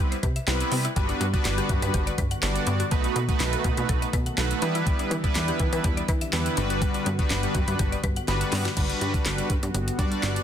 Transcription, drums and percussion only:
0.12 closed hi-hat medium
0.23 kick loud
0.23 closed hi-hat medium
0.36 closed hi-hat medium
0.48 snare medium
0.48 clap loud
0.48 closed hi-hat medium
0.61 closed hi-hat medium
0.72 open hi-hat medium
0.85 closed hi-hat medium
0.96 kick loud
0.96 closed hi-hat medium
1.09 closed hi-hat medium
1.21 closed hi-hat medium
1.34 kick loud
1.34 closed hi-hat medium
1.45 snare loud
1.45 clap loud
1.45 closed hi-hat loud
1.58 closed hi-hat medium
1.69 kick medium
1.69 closed hi-hat medium
1.82 closed hi-hat medium
1.94 kick loud
1.94 closed hi-hat medium
2.07 closed hi-hat medium
2.18 kick medium
2.18 closed hi-hat medium
2.31 closed hi-hat medium
2.43 snare loud
2.43 clap loud
2.43 closed hi-hat medium
2.56 closed hi-hat medium
2.67 closed hi-hat medium
2.80 closed hi-hat medium
2.91 kick loud
2.91 closed hi-hat medium
3.04 closed hi-hat medium
3.16 closed hi-hat medium
3.29 kick loud
3.29 closed hi-hat medium
3.40 snare loud
3.40 clap loud
3.40 closed hi-hat loud
3.53 closed hi-hat medium
3.64 kick loud
3.64 closed hi-hat medium
3.77 closed hi-hat medium
3.89 kick loud
3.89 closed hi-hat medium
4.02 closed hi-hat medium
4.13 kick medium
4.13 closed hi-hat medium
4.26 closed hi-hat medium
4.38 snare medium
4.38 clap loud
4.38 closed hi-hat medium
4.51 closed hi-hat medium
4.62 closed hi-hat medium
4.75 closed hi-hat medium
4.87 kick loud
4.87 closed hi-hat medium
4.99 closed hi-hat medium
5.11 closed hi-hat medium
5.24 kick loud
5.24 closed hi-hat medium
5.35 snare loud
5.35 clap loud
5.35 closed hi-hat loud
5.48 closed hi-hat medium
5.59 kick medium
5.59 closed hi-hat medium
5.73 closed hi-hat medium
5.84 kick loud
5.84 closed hi-hat medium
5.97 closed hi-hat medium
6.08 kick medium
6.08 closed hi-hat medium
6.21 closed hi-hat medium
6.33 snare loud
6.33 clap loud
6.33 closed hi-hat medium
6.46 closed hi-hat medium
6.57 closed hi-hat medium
6.70 closed hi-hat medium
6.82 kick loud
6.82 closed hi-hat medium
6.94 closed hi-hat medium
7.06 closed hi-hat medium
7.19 kick loud
7.19 closed hi-hat medium
7.30 snare loud
7.30 clap loud
7.30 closed hi-hat loud
7.43 closed hi-hat medium
7.55 kick medium
7.55 closed hi-hat medium
7.68 closed hi-hat medium
7.79 kick loud
7.79 closed hi-hat loud
7.92 closed hi-hat medium
8.04 kick medium
8.04 closed hi-hat medium
8.16 closed hi-hat medium
8.28 snare medium
8.28 closed hi-hat medium
8.41 closed hi-hat medium
8.52 snare medium
8.52 open hi-hat medium
8.65 snare loud
8.65 closed hi-hat medium
8.77 kick loud
8.77 closed hi-hat medium
8.77 crash medium
8.89 closed hi-hat soft
9.01 closed hi-hat medium
9.14 kick medium
9.14 closed hi-hat soft
9.26 snare loud
9.26 clap loud
9.26 closed hi-hat loud
9.38 closed hi-hat medium
9.50 kick medium
9.50 closed hi-hat medium
9.63 closed hi-hat medium
9.74 closed hi-hat medium
9.88 closed hi-hat medium
9.99 kick medium
9.99 closed hi-hat medium
10.12 closed hi-hat medium
10.23 snare medium
10.23 clap loud
10.23 closed hi-hat medium
10.36 closed hi-hat medium

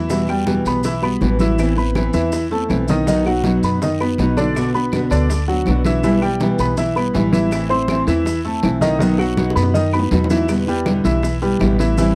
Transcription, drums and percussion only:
0.10 high bongo medium
0.10 high conga soft
0.10 long guiro medium
0.10 maracas medium
0.28 high bongo soft
0.28 high conga soft
0.28 claves medium
0.28 maracas soft
0.47 high bongo medium
0.47 high conga medium
0.47 short guiro medium
0.47 maracas soft
0.65 short guiro medium
0.65 maracas medium
0.83 high bongo medium
0.83 high conga soft
0.83 long guiro medium
0.83 maracas medium
1.02 high bongo soft
1.02 high conga soft
1.02 claves medium
1.02 maracas soft
1.21 high bongo soft
1.21 low bongo medium
1.21 high conga medium
1.21 short guiro medium
1.21 maracas soft
1.39 high bongo soft
1.39 high conga medium
1.39 short guiro medium
1.39 maracas medium
1.58 high bongo medium
1.58 high conga soft
1.58 long guiro medium
1.58 claves medium
1.58 maracas medium
1.77 high bongo soft
1.77 high conga soft
1.77 maracas soft
1.95 high bongo medium
1.95 high conga medium
1.95 short guiro medium
1.95 claves medium
1.95 maracas soft
2.13 short guiro medium
2.13 maracas medium
2.32 high bongo medium
2.32 high conga soft
2.32 long guiro medium
2.32 maracas medium
2.51 high conga soft
2.51 maracas soft
2.70 high bongo soft
2.70 low bongo medium
2.70 high conga medium
2.70 short guiro medium
2.70 claves medium
2.70 maracas soft
2.88 high bongo soft
2.88 high conga medium
2.88 short guiro medium
2.88 maracas medium
3.07 high bongo medium
3.07 long guiro medium
3.07 maracas medium
3.26 high bongo soft
3.26 high conga soft
3.26 claves medium
3.26 maracas soft
3.44 high bongo medium
3.44 high conga medium
3.44 short guiro medium
3.44 maracas soft
3.63 short guiro medium
3.63 maracas medium
3.81 high bongo medium
3.81 high conga soft
3.81 long guiro medium
3.81 maracas medium
4.01 high bongo soft
4.01 high conga soft
4.01 claves medium
4.01 maracas soft
4.18 high bongo soft
4.18 low bongo medium
4.18 high conga medium
4.18 short guiro medium
4.18 maracas soft
4.37 high bongo soft
4.37 high conga medium
4.37 short guiro medium
4.37 maracas medium
4.55 high bongo medium
4.55 high conga soft
4.55 long guiro medium
4.55 claves medium
4.55 maracas medium
4.75 high bongo soft
4.75 high conga soft
4.75 maracas soft
4.92 high bongo medium
4.92 high conga medium
4.92 short guiro medium
4.92 claves medium
4.92 maracas soft
5.10 high conga soft
5.10 short guiro medium
5.10 maracas medium
5.29 high bongo medium
5.29 high conga soft
5.29 long guiro medium
5.29 maracas medium
5.48 high bongo soft
5.48 high conga soft
5.48 maracas soft
5.66 high bongo soft
5.66 low bongo medium
5.66 high conga medium
5.66 short guiro medium
5.66 claves medium
5.66 maracas soft
5.85 high bongo soft
5.85 high conga medium
5.85 short guiro medium
5.85 maracas medium
6.03 high bongo medium
6.03 high conga soft
6.03 long guiro medium
6.03 maracas medium
6.22 high bongo soft
6.22 high conga soft
6.22 claves medium
6.22 maracas soft
6.40 high bongo medium
6.40 high conga medium
6.40 short guiro medium
6.40 maracas soft
6.58 short guiro medium
6.58 maracas medium
6.77 high bongo medium
6.77 high conga soft
6.77 long guiro medium
6.77 maracas medium
6.96 high bongo soft
6.96 high conga soft
6.96 claves medium
6.96 maracas soft
7.14 high bongo soft
7.14 low bongo medium
7.14 high conga medium
7.14 short guiro medium
7.14 maracas soft
7.33 high bongo soft
7.33 high conga medium
7.33 short guiro medium
7.33 maracas medium
7.51 high bongo medium
7.51 high conga soft
7.51 long guiro medium
7.51 claves medium
7.51 maracas medium
7.70 high bongo soft
7.70 high conga soft
7.70 maracas soft
7.88 high bongo medium
7.88 high conga loud
7.88 short guiro medium
7.88 claves medium
7.88 maracas soft
8.07 high conga soft
8.07 short guiro medium
8.07 maracas medium
8.25 high bongo medium
8.25 high conga soft
8.25 long guiro medium
8.25 maracas medium
8.45 high bongo soft
8.45 high conga soft
8.45 maracas soft
8.63 high bongo soft
8.63 low bongo medium
8.63 high conga medium
8.63 short guiro medium
8.63 claves medium
8.63 maracas soft
8.81 high bongo soft
8.81 high conga medium
8.81 short guiro medium
8.81 maracas medium
9.00 high bongo medium
9.00 high conga soft
9.00 long guiro medium
9.00 maracas medium
9.19 high bongo soft
9.19 high conga soft
9.19 claves medium
9.19 maracas soft
9.37 high bongo medium
9.37 high conga loud
9.37 short guiro medium
9.37 maracas soft
9.50 high bongo medium
9.56 short guiro medium
9.56 maracas medium
9.63 high bongo medium
9.74 high conga soft
9.74 long guiro medium
9.74 maracas medium
9.92 high conga soft
9.92 claves medium
9.92 maracas soft
9.99 low bongo medium
10.11 low bongo medium
10.11 high conga medium
10.11 short guiro medium
10.11 maracas soft
10.24 low bongo medium
10.30 high conga medium
10.30 short guiro medium
10.30 maracas medium
10.37 low bongo medium
10.48 high bongo medium
10.48 high conga soft
10.48 long guiro medium
10.48 claves medium
10.48 maracas medium
10.68 high conga soft
10.68 maracas soft
10.86 high bongo medium
10.86 high conga loud
10.86 short guiro medium
10.86 claves medium
10.86 maracas soft
11.04 short guiro medium
11.04 maracas medium
11.23 high bongo medium
11.23 high conga soft
11.23 long guiro medium
11.23 maracas medium
11.42 high conga soft
11.42 maracas soft
11.60 high bongo medium
11.60 low bongo medium
11.60 high conga medium
11.60 short guiro medium
11.60 claves medium
11.60 maracas soft
11.79 short guiro medium
11.79 maracas medium
11.97 high bongo medium
11.97 high conga soft
11.97 long guiro medium
11.97 maracas medium

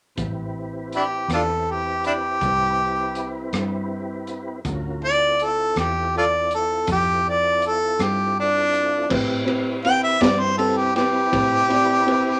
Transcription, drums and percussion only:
0.17 kick medium
0.17 closed hi-hat medium
0.93 closed hi-hat soft
1.30 cross-stick medium
1.30 closed hi-hat medium
2.04 closed hi-hat soft
2.41 kick medium
2.41 closed hi-hat medium
3.15 closed hi-hat soft
3.53 cross-stick medium
3.53 closed hi-hat medium
4.27 closed hi-hat soft
4.65 kick medium
4.65 closed hi-hat medium
5.40 closed hi-hat soft
5.76 cross-stick medium
5.76 closed hi-hat medium
6.51 closed hi-hat soft
6.87 kick medium
6.87 closed hi-hat medium
7.62 closed hi-hat soft
7.99 cross-stick medium
7.99 closed hi-hat medium
8.74 closed hi-hat soft
9.10 kick loud
9.10 crash medium
9.48 ride medium
9.85 ride medium
10.21 snare loud
10.21 ride medium
10.59 ride soft
10.96 snare soft
10.96 ride medium
11.33 kick loud
11.33 ride medium
11.70 ride medium
12.08 ride medium

